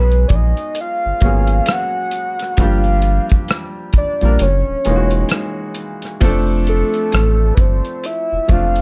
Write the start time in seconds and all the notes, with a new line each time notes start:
Already playing: B1 F#3 G#3 B3 C#4 G#4 B4
0.12 closed hi-hat
0.28 A#1 D5, kick, closed hi-hat
0.35 D#5
0.57 closed hi-hat
0.75 closed hi-hat
0.81 F5
1.06 G#1
1.20 G#1 F#3 A#3 B3 C#4, kick, closed hi-hat
1.26 G#4
1.47 closed hi-hat
1.66 cross-stick, closed hi-hat
1.72 F#5
2.11 closed hi-hat
2.39 cross-stick, closed hi-hat
2.57 G1 F3 G3 A#3 D4, kick, closed hi-hat
2.62 G4 F5
2.84 closed hi-hat
3.02 closed hi-hat
3.29 kick, closed hi-hat
3.48 cross-stick, closed hi-hat
3.93 A#1, kick, closed hi-hat
3.98 D5
4.21 A#1 F3 G3 A#3 D4, closed hi-hat
4.25 A#4
4.39 F#1 C#5, closed hi-hat
4.69 E1
4.85 E1 E3 G#3 A#3 D#4, closed hi-hat
4.89 F4
4.96 F#4
5.11 closed hi-hat
5.29 cross-stick, closed hi-hat
5.74 closed hi-hat
6.02 cross-stick, closed hi-hat
6.20 F1 F3 A3 C4 D4, kick, closed hi-hat
6.25 A4
6.67 A4, closed hi-hat
6.94 closed hi-hat
7.12 A1, cross-stick, closed hi-hat
7.55 G1 B4, kick, closed hi-hat
7.60 C5
7.85 closed hi-hat
8.04 E5, closed hi-hat
8.33 F1
8.48 F1 F3 A3 C4 D4 F5, kick, closed hi-hat
8.52 F4
8.76 closed hi-hat